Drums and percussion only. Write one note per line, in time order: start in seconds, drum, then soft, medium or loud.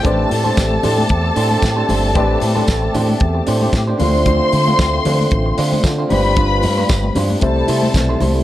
0.05 kick loud
0.05 closed hi-hat medium
0.05 low conga medium
0.29 open hi-hat medium
0.29 muted conga soft
0.29 high conga medium
0.45 high conga medium
0.57 kick loud
0.57 snare loud
0.57 closed hi-hat medium
0.57 tambourine medium
0.71 high conga medium
0.83 open hi-hat medium
0.83 low conga medium
0.98 high conga medium
1.09 kick medium
1.09 closed hi-hat soft
1.09 muted conga soft
1.36 open hi-hat medium
1.36 muted conga soft
1.51 high conga medium
1.62 kick medium
1.62 snare loud
1.62 closed hi-hat medium
1.62 tambourine medium
1.89 open hi-hat medium
1.89 high conga medium
1.89 low conga medium
2.15 kick loud
2.15 closed hi-hat medium
2.15 low conga medium
2.40 open hi-hat medium
2.40 muted conga soft
2.40 high conga medium
2.57 high conga medium
2.68 kick loud
2.68 snare loud
2.68 closed hi-hat medium
2.68 tambourine medium
2.68 muted conga soft
2.83 high conga medium
2.95 open hi-hat medium
2.95 muted conga soft
2.95 low conga medium
3.10 high conga medium
3.20 kick medium
3.20 closed hi-hat medium
3.20 muted conga soft
3.47 open hi-hat medium
3.47 muted conga soft
3.62 high conga medium
3.73 kick medium
3.73 snare loud
3.73 closed hi-hat medium
3.73 tambourine medium
4.00 open hi-hat medium
4.00 muted conga soft
4.00 high conga medium
4.00 low conga medium
4.26 kick medium
4.26 closed hi-hat medium
4.26 muted conga soft
4.26 low conga medium
4.52 open hi-hat medium
4.52 high conga soft
4.68 high conga medium
4.79 kick loud
4.79 snare loud
4.79 closed hi-hat medium
4.79 tambourine medium
4.94 high conga medium
5.05 open hi-hat medium
5.05 low conga medium
5.20 high conga medium
5.31 kick medium
5.31 closed hi-hat medium
5.31 muted conga soft
5.58 open hi-hat medium
5.72 high conga medium
5.84 kick loud
5.84 snare loud
5.84 closed hi-hat medium
5.84 tambourine medium
6.10 open hi-hat medium
6.10 high conga medium
6.10 low conga medium
6.36 kick loud
6.36 closed hi-hat medium
6.36 muted conga soft
6.36 low conga medium
6.62 open hi-hat medium
6.62 muted conga soft
6.62 high conga medium
6.77 high conga medium
6.89 kick loud
6.89 snare loud
6.89 closed hi-hat medium
6.89 tambourine medium
6.89 muted conga soft
7.03 high conga medium
7.15 open hi-hat medium
7.15 low conga medium
7.30 high conga medium
7.41 kick medium
7.41 closed hi-hat medium
7.41 muted conga soft
7.68 open hi-hat medium
7.83 high conga medium
7.94 kick medium
7.94 snare loud
7.94 closed hi-hat medium
7.94 tambourine medium
7.94 muted conga soft
8.21 open hi-hat soft
8.21 muted conga soft
8.21 high conga medium
8.21 low conga medium